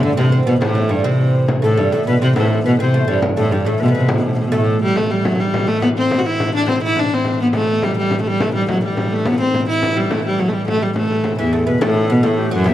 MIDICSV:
0, 0, Header, 1, 6, 480
1, 0, Start_track
1, 0, Tempo, 289157
1, 1018, Time_signature, 6, 3, 24, 8
1, 10611, Tempo, 284765
1, 21309, End_track
2, 0, Start_track
2, 0, Title_t, "Recorder"
2, 0, Program_c, 0, 74
2, 2720, Note_on_c, 0, 69, 90
2, 3161, Note_off_c, 0, 69, 0
2, 3194, Note_on_c, 0, 69, 80
2, 3415, Note_off_c, 0, 69, 0
2, 3433, Note_on_c, 0, 71, 88
2, 3654, Note_off_c, 0, 71, 0
2, 3678, Note_on_c, 0, 72, 80
2, 3898, Note_off_c, 0, 72, 0
2, 3906, Note_on_c, 0, 69, 83
2, 4019, Note_on_c, 0, 71, 79
2, 4043, Note_off_c, 0, 69, 0
2, 4119, Note_on_c, 0, 69, 93
2, 4144, Note_off_c, 0, 71, 0
2, 4384, Note_off_c, 0, 69, 0
2, 4394, Note_on_c, 0, 71, 82
2, 4616, Note_off_c, 0, 71, 0
2, 4634, Note_on_c, 0, 72, 86
2, 5302, Note_off_c, 0, 72, 0
2, 5585, Note_on_c, 0, 69, 78
2, 5811, Note_off_c, 0, 69, 0
2, 5833, Note_on_c, 0, 67, 67
2, 6055, Note_off_c, 0, 67, 0
2, 6066, Note_on_c, 0, 69, 76
2, 6305, Note_on_c, 0, 71, 77
2, 6329, Note_off_c, 0, 69, 0
2, 6342, Note_on_c, 0, 69, 69
2, 6367, Note_off_c, 0, 71, 0
2, 6386, Note_on_c, 0, 71, 77
2, 6410, Note_off_c, 0, 69, 0
2, 6437, Note_off_c, 0, 71, 0
2, 6455, Note_on_c, 0, 71, 77
2, 6777, Note_off_c, 0, 71, 0
2, 7507, Note_on_c, 0, 69, 85
2, 7952, Note_off_c, 0, 69, 0
2, 19027, Note_on_c, 0, 76, 67
2, 19270, Note_on_c, 0, 69, 75
2, 19295, Note_off_c, 0, 76, 0
2, 19505, Note_off_c, 0, 69, 0
2, 19521, Note_on_c, 0, 71, 75
2, 19746, Note_on_c, 0, 69, 93
2, 19772, Note_off_c, 0, 71, 0
2, 20222, Note_on_c, 0, 71, 83
2, 20247, Note_off_c, 0, 69, 0
2, 20452, Note_on_c, 0, 69, 80
2, 20477, Note_off_c, 0, 71, 0
2, 20694, Note_on_c, 0, 67, 81
2, 20720, Note_off_c, 0, 69, 0
2, 20931, Note_on_c, 0, 66, 85
2, 20957, Note_off_c, 0, 67, 0
2, 21170, Note_off_c, 0, 66, 0
2, 21179, Note_on_c, 0, 76, 87
2, 21309, Note_off_c, 0, 76, 0
2, 21309, End_track
3, 0, Start_track
3, 0, Title_t, "Oud"
3, 0, Program_c, 1, 24
3, 49, Note_on_c, 1, 62, 81
3, 281, Note_off_c, 1, 62, 0
3, 288, Note_on_c, 1, 60, 94
3, 514, Note_off_c, 1, 60, 0
3, 534, Note_on_c, 1, 60, 80
3, 777, Note_on_c, 1, 59, 92
3, 783, Note_off_c, 1, 60, 0
3, 1002, Note_off_c, 1, 59, 0
3, 1009, Note_on_c, 1, 57, 67
3, 1225, Note_off_c, 1, 57, 0
3, 1245, Note_on_c, 1, 57, 71
3, 1473, Note_off_c, 1, 57, 0
3, 1480, Note_on_c, 1, 55, 77
3, 1730, Note_on_c, 1, 60, 93
3, 1739, Note_off_c, 1, 55, 0
3, 2408, Note_off_c, 1, 60, 0
3, 2690, Note_on_c, 1, 57, 69
3, 2922, Note_off_c, 1, 57, 0
3, 2945, Note_on_c, 1, 55, 69
3, 3187, Note_off_c, 1, 55, 0
3, 3194, Note_on_c, 1, 57, 80
3, 3432, Note_off_c, 1, 57, 0
3, 3438, Note_on_c, 1, 59, 70
3, 3681, Note_off_c, 1, 59, 0
3, 3684, Note_on_c, 1, 60, 83
3, 3900, Note_off_c, 1, 60, 0
3, 3915, Note_on_c, 1, 57, 62
3, 4404, Note_off_c, 1, 57, 0
3, 4410, Note_on_c, 1, 59, 73
3, 4647, Note_off_c, 1, 59, 0
3, 4647, Note_on_c, 1, 60, 82
3, 4863, Note_off_c, 1, 60, 0
3, 4881, Note_on_c, 1, 57, 75
3, 5100, Note_off_c, 1, 57, 0
3, 5107, Note_on_c, 1, 55, 78
3, 5332, Note_off_c, 1, 55, 0
3, 5596, Note_on_c, 1, 57, 74
3, 5838, Note_off_c, 1, 57, 0
3, 5845, Note_on_c, 1, 55, 65
3, 6074, Note_off_c, 1, 55, 0
3, 6081, Note_on_c, 1, 57, 79
3, 6398, Note_on_c, 1, 60, 52
3, 6415, Note_off_c, 1, 57, 0
3, 6431, Note_off_c, 1, 60, 0
3, 6440, Note_on_c, 1, 59, 71
3, 6552, Note_on_c, 1, 60, 69
3, 6558, Note_off_c, 1, 59, 0
3, 6773, Note_off_c, 1, 60, 0
3, 7500, Note_on_c, 1, 57, 84
3, 7949, Note_off_c, 1, 57, 0
3, 19028, Note_on_c, 1, 52, 68
3, 19267, Note_on_c, 1, 57, 62
3, 19272, Note_off_c, 1, 52, 0
3, 19496, Note_off_c, 1, 57, 0
3, 19502, Note_on_c, 1, 59, 78
3, 19739, Note_off_c, 1, 59, 0
3, 19746, Note_on_c, 1, 57, 78
3, 20187, Note_off_c, 1, 57, 0
3, 20228, Note_on_c, 1, 59, 81
3, 20446, Note_off_c, 1, 59, 0
3, 20452, Note_on_c, 1, 57, 85
3, 20928, Note_on_c, 1, 54, 94
3, 20945, Note_off_c, 1, 57, 0
3, 21138, Note_off_c, 1, 54, 0
3, 21144, Note_on_c, 1, 52, 68
3, 21309, Note_off_c, 1, 52, 0
3, 21309, End_track
4, 0, Start_track
4, 0, Title_t, "Viola da gamba"
4, 0, Program_c, 2, 42
4, 27, Note_on_c, 2, 50, 112
4, 270, Note_off_c, 2, 50, 0
4, 280, Note_on_c, 2, 48, 97
4, 736, Note_off_c, 2, 48, 0
4, 767, Note_on_c, 2, 47, 96
4, 996, Note_off_c, 2, 47, 0
4, 1021, Note_on_c, 2, 45, 97
4, 1505, Note_on_c, 2, 43, 87
4, 1530, Note_off_c, 2, 45, 0
4, 1739, Note_on_c, 2, 48, 86
4, 1764, Note_off_c, 2, 43, 0
4, 2464, Note_off_c, 2, 48, 0
4, 2731, Note_on_c, 2, 45, 84
4, 2969, Note_on_c, 2, 43, 85
4, 2994, Note_off_c, 2, 45, 0
4, 3199, Note_on_c, 2, 45, 78
4, 3224, Note_off_c, 2, 43, 0
4, 3434, Note_off_c, 2, 45, 0
4, 3447, Note_on_c, 2, 47, 88
4, 3662, Note_off_c, 2, 47, 0
4, 3672, Note_on_c, 2, 48, 102
4, 3894, Note_off_c, 2, 48, 0
4, 3944, Note_on_c, 2, 45, 95
4, 4375, Note_off_c, 2, 45, 0
4, 4398, Note_on_c, 2, 47, 102
4, 4618, Note_off_c, 2, 47, 0
4, 4660, Note_on_c, 2, 48, 82
4, 5093, Note_off_c, 2, 48, 0
4, 5118, Note_on_c, 2, 43, 87
4, 5338, Note_off_c, 2, 43, 0
4, 5607, Note_on_c, 2, 45, 88
4, 5840, Note_on_c, 2, 43, 78
4, 5865, Note_off_c, 2, 45, 0
4, 6084, Note_on_c, 2, 45, 80
4, 6109, Note_off_c, 2, 43, 0
4, 6317, Note_off_c, 2, 45, 0
4, 6337, Note_on_c, 2, 47, 84
4, 6403, Note_on_c, 2, 48, 77
4, 6428, Note_off_c, 2, 47, 0
4, 6451, Note_on_c, 2, 47, 84
4, 6476, Note_off_c, 2, 48, 0
4, 6577, Note_on_c, 2, 48, 87
4, 6602, Note_off_c, 2, 47, 0
4, 6799, Note_off_c, 2, 48, 0
4, 6808, Note_on_c, 2, 45, 67
4, 6937, Note_on_c, 2, 47, 67
4, 6962, Note_off_c, 2, 45, 0
4, 7043, Note_on_c, 2, 45, 67
4, 7068, Note_off_c, 2, 47, 0
4, 7181, Note_on_c, 2, 47, 64
4, 7206, Note_off_c, 2, 45, 0
4, 7288, Note_on_c, 2, 45, 63
4, 7313, Note_off_c, 2, 47, 0
4, 7412, Note_on_c, 2, 47, 61
4, 7436, Note_off_c, 2, 45, 0
4, 7550, Note_on_c, 2, 45, 86
4, 7575, Note_off_c, 2, 47, 0
4, 8007, Note_off_c, 2, 45, 0
4, 8022, Note_on_c, 2, 55, 95
4, 8254, Note_on_c, 2, 57, 86
4, 8279, Note_off_c, 2, 55, 0
4, 8484, Note_on_c, 2, 55, 76
4, 8508, Note_off_c, 2, 57, 0
4, 8714, Note_on_c, 2, 54, 84
4, 8739, Note_off_c, 2, 55, 0
4, 8962, Note_on_c, 2, 55, 82
4, 8987, Note_off_c, 2, 54, 0
4, 9427, Note_on_c, 2, 57, 90
4, 9452, Note_off_c, 2, 55, 0
4, 9652, Note_off_c, 2, 57, 0
4, 9662, Note_on_c, 2, 59, 98
4, 9768, Note_off_c, 2, 59, 0
4, 9923, Note_on_c, 2, 60, 96
4, 10270, Note_on_c, 2, 66, 76
4, 10295, Note_off_c, 2, 60, 0
4, 10391, Note_on_c, 2, 64, 90
4, 10416, Note_off_c, 2, 66, 0
4, 10862, Note_off_c, 2, 64, 0
4, 10880, Note_on_c, 2, 62, 100
4, 11092, Note_off_c, 2, 62, 0
4, 11119, Note_on_c, 2, 60, 91
4, 11332, Note_off_c, 2, 60, 0
4, 11361, Note_on_c, 2, 64, 95
4, 11626, Note_on_c, 2, 62, 90
4, 11651, Note_off_c, 2, 64, 0
4, 11863, Note_on_c, 2, 60, 84
4, 11888, Note_off_c, 2, 62, 0
4, 12323, Note_off_c, 2, 60, 0
4, 12336, Note_on_c, 2, 59, 89
4, 12437, Note_off_c, 2, 59, 0
4, 12560, Note_on_c, 2, 57, 86
4, 13049, Note_on_c, 2, 55, 81
4, 13074, Note_off_c, 2, 57, 0
4, 13277, Note_off_c, 2, 55, 0
4, 13285, Note_on_c, 2, 55, 80
4, 13668, Note_off_c, 2, 55, 0
4, 13680, Note_on_c, 2, 57, 53
4, 13788, Note_on_c, 2, 55, 90
4, 13814, Note_off_c, 2, 57, 0
4, 14023, Note_on_c, 2, 57, 82
4, 14048, Note_off_c, 2, 55, 0
4, 14236, Note_off_c, 2, 57, 0
4, 14247, Note_on_c, 2, 55, 81
4, 14462, Note_off_c, 2, 55, 0
4, 14499, Note_on_c, 2, 54, 76
4, 14708, Note_off_c, 2, 54, 0
4, 14756, Note_on_c, 2, 55, 73
4, 15221, Note_on_c, 2, 57, 83
4, 15247, Note_off_c, 2, 55, 0
4, 15463, Note_on_c, 2, 59, 96
4, 15488, Note_off_c, 2, 57, 0
4, 15687, Note_off_c, 2, 59, 0
4, 15702, Note_on_c, 2, 60, 89
4, 16133, Note_off_c, 2, 60, 0
4, 16175, Note_on_c, 2, 64, 87
4, 16643, Note_on_c, 2, 55, 80
4, 16669, Note_off_c, 2, 64, 0
4, 16904, Note_on_c, 2, 57, 84
4, 16930, Note_off_c, 2, 55, 0
4, 17127, Note_off_c, 2, 57, 0
4, 17134, Note_on_c, 2, 55, 77
4, 17360, Note_on_c, 2, 54, 77
4, 17385, Note_off_c, 2, 55, 0
4, 17518, Note_on_c, 2, 57, 52
4, 17543, Note_off_c, 2, 54, 0
4, 17584, Note_on_c, 2, 55, 72
4, 17609, Note_off_c, 2, 57, 0
4, 17825, Note_off_c, 2, 55, 0
4, 17841, Note_on_c, 2, 57, 86
4, 18088, Note_on_c, 2, 55, 76
4, 18113, Note_off_c, 2, 57, 0
4, 18316, Note_off_c, 2, 55, 0
4, 18330, Note_on_c, 2, 57, 74
4, 18986, Note_off_c, 2, 57, 0
4, 19061, Note_on_c, 2, 40, 75
4, 19533, Note_on_c, 2, 47, 86
4, 19558, Note_off_c, 2, 40, 0
4, 19756, Note_off_c, 2, 47, 0
4, 19765, Note_on_c, 2, 45, 105
4, 20263, Note_on_c, 2, 47, 100
4, 20289, Note_off_c, 2, 45, 0
4, 20507, Note_on_c, 2, 45, 94
4, 20532, Note_off_c, 2, 47, 0
4, 20957, Note_off_c, 2, 45, 0
4, 20986, Note_on_c, 2, 42, 101
4, 21211, Note_on_c, 2, 40, 102
4, 21236, Note_off_c, 2, 42, 0
4, 21309, Note_off_c, 2, 40, 0
4, 21309, End_track
5, 0, Start_track
5, 0, Title_t, "Pipe organ"
5, 0, Program_c, 3, 19
5, 0, Note_on_c, 3, 45, 60
5, 0, Note_on_c, 3, 52, 56
5, 2441, Note_off_c, 3, 52, 0
5, 2460, Note_off_c, 3, 45, 0
5, 2475, Note_on_c, 3, 52, 62
5, 2493, Note_on_c, 3, 45, 66
5, 8195, Note_off_c, 3, 45, 0
5, 8213, Note_off_c, 3, 52, 0
5, 8228, Note_on_c, 3, 45, 60
5, 8246, Note_on_c, 3, 52, 59
5, 13955, Note_off_c, 3, 52, 0
5, 13959, Note_off_c, 3, 45, 0
5, 13989, Note_on_c, 3, 52, 58
5, 13993, Note_on_c, 3, 45, 55
5, 19689, Note_off_c, 3, 45, 0
5, 19694, Note_off_c, 3, 52, 0
5, 19723, Note_on_c, 3, 45, 60
5, 19727, Note_on_c, 3, 52, 65
5, 21309, Note_off_c, 3, 45, 0
5, 21309, Note_off_c, 3, 52, 0
5, 21309, End_track
6, 0, Start_track
6, 0, Title_t, "Frame drum"
6, 65, Note_on_c, 9, 64, 28
6, 231, Note_off_c, 9, 64, 0
6, 307, Note_on_c, 9, 64, 70
6, 473, Note_off_c, 9, 64, 0
6, 554, Note_on_c, 9, 64, 26
6, 720, Note_off_c, 9, 64, 0
6, 1023, Note_on_c, 9, 64, 98
6, 1189, Note_off_c, 9, 64, 0
6, 1512, Note_on_c, 9, 64, 25
6, 1678, Note_off_c, 9, 64, 0
6, 1749, Note_on_c, 9, 64, 67
6, 1915, Note_off_c, 9, 64, 0
6, 2228, Note_on_c, 9, 64, 23
6, 2394, Note_off_c, 9, 64, 0
6, 2464, Note_on_c, 9, 64, 85
6, 2630, Note_off_c, 9, 64, 0
6, 2721, Note_on_c, 9, 64, 26
6, 2887, Note_off_c, 9, 64, 0
6, 3190, Note_on_c, 9, 64, 61
6, 3356, Note_off_c, 9, 64, 0
6, 3435, Note_on_c, 9, 64, 26
6, 3601, Note_off_c, 9, 64, 0
6, 3918, Note_on_c, 9, 64, 90
6, 4084, Note_off_c, 9, 64, 0
6, 4145, Note_on_c, 9, 64, 27
6, 4311, Note_off_c, 9, 64, 0
6, 4396, Note_on_c, 9, 64, 27
6, 4562, Note_off_c, 9, 64, 0
6, 4631, Note_on_c, 9, 64, 60
6, 4797, Note_off_c, 9, 64, 0
6, 5351, Note_on_c, 9, 64, 97
6, 5517, Note_off_c, 9, 64, 0
6, 5594, Note_on_c, 9, 64, 27
6, 5760, Note_off_c, 9, 64, 0
6, 5834, Note_on_c, 9, 64, 28
6, 6000, Note_off_c, 9, 64, 0
6, 6063, Note_on_c, 9, 64, 63
6, 6229, Note_off_c, 9, 64, 0
6, 6306, Note_on_c, 9, 64, 27
6, 6472, Note_off_c, 9, 64, 0
6, 6781, Note_on_c, 9, 64, 100
6, 6947, Note_off_c, 9, 64, 0
6, 7499, Note_on_c, 9, 64, 67
6, 7665, Note_off_c, 9, 64, 0
6, 8232, Note_on_c, 9, 64, 73
6, 8398, Note_off_c, 9, 64, 0
6, 8716, Note_on_c, 9, 64, 81
6, 8882, Note_off_c, 9, 64, 0
6, 8945, Note_on_c, 9, 64, 25
6, 9111, Note_off_c, 9, 64, 0
6, 9194, Note_on_c, 9, 64, 78
6, 9360, Note_off_c, 9, 64, 0
6, 9666, Note_on_c, 9, 64, 88
6, 9832, Note_off_c, 9, 64, 0
6, 10144, Note_on_c, 9, 64, 82
6, 10310, Note_off_c, 9, 64, 0
6, 10383, Note_on_c, 9, 64, 26
6, 10549, Note_off_c, 9, 64, 0
6, 10624, Note_on_c, 9, 64, 77
6, 10793, Note_off_c, 9, 64, 0
6, 11091, Note_on_c, 9, 64, 83
6, 11259, Note_off_c, 9, 64, 0
6, 11574, Note_on_c, 9, 64, 69
6, 11742, Note_off_c, 9, 64, 0
6, 11819, Note_on_c, 9, 64, 21
6, 11988, Note_off_c, 9, 64, 0
6, 12051, Note_on_c, 9, 64, 75
6, 12219, Note_off_c, 9, 64, 0
6, 12530, Note_on_c, 9, 64, 79
6, 12699, Note_off_c, 9, 64, 0
6, 13018, Note_on_c, 9, 64, 75
6, 13187, Note_off_c, 9, 64, 0
6, 13269, Note_on_c, 9, 64, 23
6, 13437, Note_off_c, 9, 64, 0
6, 13504, Note_on_c, 9, 64, 73
6, 13673, Note_off_c, 9, 64, 0
6, 14000, Note_on_c, 9, 64, 90
6, 14169, Note_off_c, 9, 64, 0
6, 14475, Note_on_c, 9, 64, 85
6, 14644, Note_off_c, 9, 64, 0
6, 14717, Note_on_c, 9, 64, 24
6, 14886, Note_off_c, 9, 64, 0
6, 14960, Note_on_c, 9, 64, 69
6, 15129, Note_off_c, 9, 64, 0
6, 15435, Note_on_c, 9, 64, 85
6, 15604, Note_off_c, 9, 64, 0
6, 15921, Note_on_c, 9, 64, 76
6, 16089, Note_off_c, 9, 64, 0
6, 16156, Note_on_c, 9, 64, 24
6, 16324, Note_off_c, 9, 64, 0
6, 16399, Note_on_c, 9, 64, 73
6, 16568, Note_off_c, 9, 64, 0
6, 16872, Note_on_c, 9, 64, 80
6, 17041, Note_off_c, 9, 64, 0
6, 17353, Note_on_c, 9, 64, 67
6, 17522, Note_off_c, 9, 64, 0
6, 17601, Note_on_c, 9, 64, 24
6, 17769, Note_off_c, 9, 64, 0
6, 17837, Note_on_c, 9, 64, 70
6, 18005, Note_off_c, 9, 64, 0
6, 18306, Note_on_c, 9, 64, 68
6, 18474, Note_off_c, 9, 64, 0
6, 18779, Note_on_c, 9, 64, 68
6, 18948, Note_off_c, 9, 64, 0
6, 19752, Note_on_c, 9, 64, 105
6, 19921, Note_off_c, 9, 64, 0
6, 19987, Note_on_c, 9, 64, 30
6, 20156, Note_off_c, 9, 64, 0
6, 20462, Note_on_c, 9, 64, 72
6, 20630, Note_off_c, 9, 64, 0
6, 21171, Note_on_c, 9, 64, 91
6, 21309, Note_off_c, 9, 64, 0
6, 21309, End_track
0, 0, End_of_file